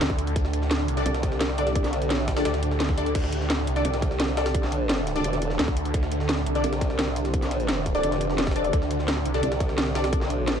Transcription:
Already playing: A2 D3 D4 A4
0.01 D2, snare, closed hi-hat
0.10 kick, snare
0.19 closed hi-hat
0.27 closed hi-hat
0.36 D2 G4, kick, closed hi-hat
0.45 snare
0.53 closed hi-hat
0.62 snare
0.71 snare, closed hi-hat
0.80 snare
0.88 C2, closed hi-hat
0.97 D4 A4 D5, snare, closed hi-hat
1.06 C2, closed hi-hat
1.14 snare, closed hi-hat
1.23 kick, snare, closed hi-hat
1.32 snare
1.41 snare, closed hi-hat
1.49 snare
1.58 D4 A4 D5, closed hi-hat
1.67 snare, closed hi-hat
1.75 kick, closed hi-hat
1.84 snare, closed hi-hat
1.93 snare, closed hi-hat
2.02 B1, closed hi-hat
2.10 snare, closed hi-hat
2.19 snare
2.28 A#1, kick, snare, closed hi-hat
2.37 D4 A4 D5, snare, closed hi-hat
2.45 D2, snare, closed hi-hat
2.54 snare, closed hi-hat
2.63 closed hi-hat
2.71 snare
2.80 snare, closed hi-hat
2.89 kick, snare
2.98 D4 A4 D5, closed hi-hat
3.06 closed hi-hat
3.15 D2 A4, kick, closed hi-hat, crash
3.24 snare
3.32 closed hi-hat
3.41 snare
3.50 snare, closed hi-hat
3.59 snare
3.67 C2, closed hi-hat
3.76 D4 A4 D5, snare, closed hi-hat
3.85 C2, closed hi-hat
3.94 snare, closed hi-hat
4.02 kick, snare, closed hi-hat
4.11 snare
4.20 snare, closed hi-hat
4.28 snare
4.37 D4 A4 D5, snare, closed hi-hat
4.46 snare, closed hi-hat
4.55 kick, closed hi-hat
4.63 snare
4.72 closed hi-hat
4.89 snare, closed hi-hat
5.07 snare, closed hi-hat
5.16 D4 A4 D5, snare, closed hi-hat
5.24 E1, closed hi-hat
5.33 snare, closed hi-hat
5.42 closed hi-hat
5.50 snare
5.59 D2, snare, closed hi-hat
5.68 kick, snare
5.77 closed hi-hat
5.85 closed hi-hat
5.94 D2 C5, kick, closed hi-hat
6.03 snare
6.12 closed hi-hat
6.20 snare
6.29 snare, closed hi-hat
6.38 snare
6.46 C2, closed hi-hat
6.55 D4 A4 D5, closed hi-hat
6.64 C2, closed hi-hat
6.73 snare, closed hi-hat
6.81 kick, snare, closed hi-hat
6.90 snare
6.99 snare, closed hi-hat
7.08 snare
7.16 closed hi-hat
7.25 snare, closed hi-hat
7.34 kick, closed hi-hat
7.42 snare, closed hi-hat
7.51 snare, closed hi-hat
7.60 closed hi-hat
7.69 snare, closed hi-hat
7.86 kick, snare, closed hi-hat
7.95 D4 A4 D5, snare, closed hi-hat
8.03 F1, closed hi-hat
8.12 snare, closed hi-hat
8.21 closed hi-hat
8.30 snare
8.38 snare, closed hi-hat
8.47 kick, snare, closed hi-hat
8.51 snare, closed hi-hat
8.56 D4 A4 D5, closed hi-hat
8.64 closed hi-hat
8.73 D2 A4, kick, closed hi-hat
8.82 snare
8.91 closed hi-hat
8.99 snare
9.08 snare, closed hi-hat
9.17 snare
9.25 C2, closed hi-hat
9.34 D4 A4 D5, snare, closed hi-hat
9.43 C2, closed hi-hat
9.52 snare, closed hi-hat
9.60 kick, snare, closed hi-hat
9.69 snare
9.78 snare, closed hi-hat
9.87 snare
9.95 D4 A4 D5, snare, closed hi-hat
10.04 snare, closed hi-hat
10.13 kick, closed hi-hat
10.21 snare
10.30 closed hi-hat
10.43 A#1
10.48 snare, closed hi-hat

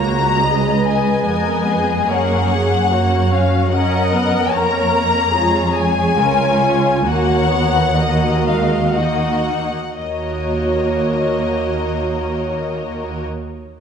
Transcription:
Already playing: C#2 A#3 C#5 A#5
0.05 F#4
0.46 G#3 G#4 B4 D#5
0.87 G#3 G#5
1.27 F2 B3 A#4 D#5
1.71 G#4
2.10 F#2 A#3 A#4 C#5 F#5
2.52 G#4
2.91 A#3 F#4 C#5
3.32 C#4 F5
3.71 C#4 A#4 D#5 F#5
4.13 B3
4.52 F2 A#3 A#4 C#5 A#5
5.33 G#3 F4 G#4 C#5
5.76 G#4 G#5
6.17 C#2 C#4 F4 A#4 C#5
6.64 F4
7.06 D#2 A#3 F#4 A#4 C#5 F#5
7.51 B3
7.96 A#3 F#4 A#4 D#5
8.47 G#3 F5
8.95 A#3 D#4 F#4 D#5 F#5
9.97 D#2 A#3 F#4 A#4 C#5 D#5

